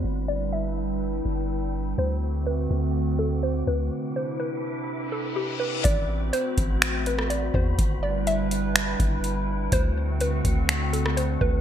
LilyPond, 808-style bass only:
\new Staff \with { instrumentName = "808-style bass" } { \clef bass \time 4/4 \key a \dorian \tempo 4 = 124 g,,2~ g,,8 g,,4. | d,4. d,2 d,8 | r1 | a,,4 r8 a,,2 e,8 |
g,,2~ g,,8 g,,4. | d,4. d,2 d,8 | }